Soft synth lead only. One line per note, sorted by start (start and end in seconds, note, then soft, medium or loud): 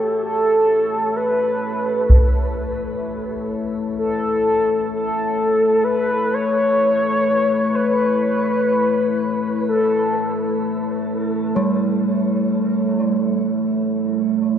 0.00 0.21 A4 medium
0.23 1.18 A4 loud
1.16 2.56 B4 loud
3.98 4.87 A4 medium
4.94 5.85 A4 medium
5.84 6.35 B4 loud
6.34 7.76 C#5 loud
7.75 9.64 B4 loud
9.68 10.58 A4 medium